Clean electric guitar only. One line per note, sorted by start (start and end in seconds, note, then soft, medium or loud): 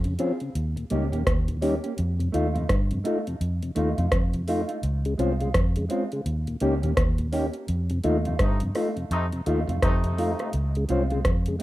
0.19 0.33 C4 medium
0.19 0.34 F4 medium
0.19 0.34 G#4 medium
0.90 1.05 A#3 medium
0.90 1.05 C#4 medium
0.90 1.05 G4 medium
1.12 1.20 A#3 medium
1.12 1.20 C#4 medium
1.12 1.20 G4 medium
1.61 1.76 A#3 medium
1.61 1.76 C#4 medium
1.61 1.76 G4 medium
1.84 1.92 A#3 medium
1.84 1.91 C#4 soft
1.84 1.91 G4 medium
2.32 2.47 A3 medium
2.32 2.47 D#4 medium
2.32 2.48 F4 medium
2.54 2.62 A3 medium
2.54 2.62 D#4 medium
2.54 2.62 F4 medium
3.04 3.18 A3 medium
3.04 3.19 D#4 medium
3.04 3.19 F4 medium
3.75 3.90 A3 medium
3.75 3.90 D#4 medium
3.75 3.91 F4 loud
3.97 4.06 A3 soft
3.97 4.05 D#4 medium
3.97 4.05 F4 medium
4.48 4.62 A3 medium
4.48 4.62 D#4 medium
4.48 4.62 F4 medium
4.68 4.77 A3 soft
4.68 4.76 D#4 medium
4.68 4.76 F4 medium
5.18 5.32 G#3 medium
5.18 5.33 C4 medium
5.18 5.33 F4 medium
5.40 5.48 G#3 soft
5.40 5.48 C4 soft
5.40 5.47 F4 medium
5.89 6.03 G#3 medium
5.89 6.04 C4 medium
5.89 6.04 F4 medium
6.61 6.75 A#3 medium
6.61 6.76 C#4 medium
6.61 6.76 G4 loud
6.82 6.91 A#3 medium
6.82 6.90 C#4 medium
6.82 6.90 G4 medium
7.32 7.46 A#3 medium
7.32 7.47 C#4 medium
7.32 7.47 G4 medium
8.04 8.18 A3 medium
8.04 8.18 D#4 medium
8.04 8.19 F4 medium
8.25 8.34 A3 medium
8.25 8.33 D#4 medium
8.25 8.33 F4 medium
8.75 8.89 A3 medium
8.75 8.89 D#4 medium
8.75 8.90 F4 medium
9.46 9.60 A3 medium
9.46 9.61 D#4 medium
9.46 9.61 F4 loud
9.68 9.76 A3 soft
9.68 9.76 D#4 medium
9.68 9.75 F4 medium
10.18 10.32 A3 medium
10.18 10.32 D#4 medium
10.18 10.32 F4 medium
10.39 10.47 A3 soft
10.39 10.47 D#4 medium
10.39 10.47 F4 medium
10.88 11.03 G#3 medium
10.88 11.03 C4 medium
10.88 11.04 F4 medium
11.10 11.18 G#3 soft
11.10 11.18 C4 medium
11.10 11.18 F4 medium
11.59 11.63 G#3 medium